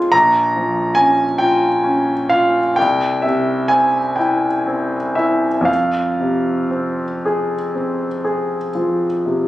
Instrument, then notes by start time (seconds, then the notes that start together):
grand piano
Already playing: C4 F4 G#4
0.12 A#1 A#5
0.56 F3
0.95 C#4 G#5
1.38 F4 G5
1.84 C#4
2.29 F4 F5
2.76 C2 G5
3.22 C3 E5
3.68 C4 G#5
4.16 E4 G5
4.67 C4
5.15 E4 E5
5.61 F2
5.65 F5
6.20 C3
6.71 C4
7.25 G#4
7.75 C4
8.24 G#4
8.75 F3
9.26 C3